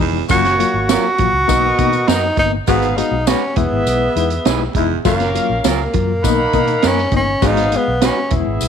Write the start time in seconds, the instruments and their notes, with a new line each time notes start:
0.00 fingered electric bass F1, baritone saxophone E2, reed electric piano E3 G#3 D#4, kick, open hi-hat
0.29 fingered electric bass F#1, baritone saxophone F#2, reed electric piano F#3 A#3 F4, horn section A#3 F#4 C#5, tenor saxophone F#4, kick, closed hi-hat, tambourine
0.45 snare, closed hi-hat
0.59 reed electric piano F#3 A#3 F4, closed hi-hat
0.74 fingered electric bass G#1
0.89 reed electric piano F#3 A#3 F4, clean electric guitar C#4 F4 A#4, tenor saxophone F#4, snare, closed hi-hat, tambourine
1.18 fingered electric bass A#1, reed electric piano F#3 A#3 F4, kick, closed hi-hat
1.33 fingered electric bass C#2
1.48 fingered electric bass B1, reed electric piano A#3 B3 D#4, horn section B3 A#4 D#5, kick, closed hi-hat, tambourine
1.78 fingered electric bass B2, reed electric piano A#3 B3 D#4, kick, closed hi-hat
1.93 closed hi-hat
2.08 fingered electric bass F#2, reed electric piano A#3 B3 D#4, clean electric guitar D#4 F#4 A#4, tenor saxophone D#4, snare, closed hi-hat, tambourine
2.37 fingered electric bass G1, reed electric piano A#3 B3 D#4, tenor saxophone D#4, kick, closed hi-hat
2.67 fingered electric bass G#1, baritone saxophone G#2, reed electric piano G#3 B3 F#4, tenor saxophone B3, horn section B3 G#4 F5, kick, closed hi-hat, tambourine
2.82 closed hi-hat
2.97 reed electric piano G#3 B3 F#4, tenor saxophone D#4, closed hi-hat
3.11 fingered electric bass B1
3.27 reed electric piano G#3 B3 F#4, tenor saxophone C#4, clean electric guitar D#4 F#4 B4, snare, closed hi-hat, tambourine
3.56 fingered electric bass E1, reed electric piano G#3 B3 E4, tenor saxophone B3, horn section B3 G#4 E5, kick, closed hi-hat
3.72 fingered electric bass G#1
3.86 fingered electric bass B1, closed hi-hat, tambourine
4.16 fingered electric bass E2, reed electric piano G#3 D#4 E4, closed hi-hat
4.30 closed hi-hat
4.45 fingered electric bass B1, reed electric piano G#3 D#4 E4, clean electric guitar D#4 G#4 B4, snare, closed hi-hat, tambourine
4.75 fingered electric bass F1, baritone saxophone E2, reed electric piano G#3 D#4 E4, kick, closed hi-hat
5.05 fingered electric bass F#1, baritone saxophone F#2, reed electric piano F#3 A#3 F4, tenor saxophone A#3, horn section C#4 A#4 F5, kick, closed hi-hat, tambourine
5.20 snare, closed hi-hat
5.35 reed electric piano F#3 A#3 F4, closed hi-hat
5.49 fingered electric bass A#1
5.64 fingered electric bass C#2, reed electric piano F#3 A#3 F4, tenor saxophone A#3, clean electric guitar C#4 F4 A#4, snare, closed hi-hat, tambourine
5.94 fingered electric bass F#2, reed electric piano F#3 A#3 F4, kick, closed hi-hat
6.23 fingered electric bass B1, reed electric piano A#3 B3 D#4, horn section D#4 F#5 B5, kick, closed hi-hat, tambourine
6.53 fingered electric bass B2, reed electric piano A#3 B3 D#4, kick, closed hi-hat
6.67 closed hi-hat
6.83 fingered electric bass F#2, reed electric piano A#3 B3 D#4, clean electric guitar B3 D#4 A#4, snare, closed hi-hat, tambourine
6.87 tenor saxophone C#4
6.98 snare
7.12 fingered electric bass G1, reed electric piano A#3 B3 D#4, kick, closed hi-hat
7.16 tenor saxophone C#4
7.42 fingered electric bass G#1, baritone saxophone G#2, reed electric piano G#3 B3 F#4, horn section B3 G#4 F5, kick, closed hi-hat, tambourine
7.47 tenor saxophone D#4
7.57 snare, closed hi-hat
7.72 reed electric piano G#3 B3 G#4, closed hi-hat
7.76 tenor saxophone B3
7.88 fingered electric bass B1
8.01 reed electric piano G#3 B3 F#4, tenor saxophone C#4, clean electric guitar D#4 F#4 B4, snare, closed hi-hat, tambourine
8.31 fingered electric bass E1, reed electric piano G#3 B3 E4, horn section B3 G#4 E5, kick, closed hi-hat
8.47 fingered electric bass G#1
8.61 fingered electric bass B1, closed hi-hat, tambourine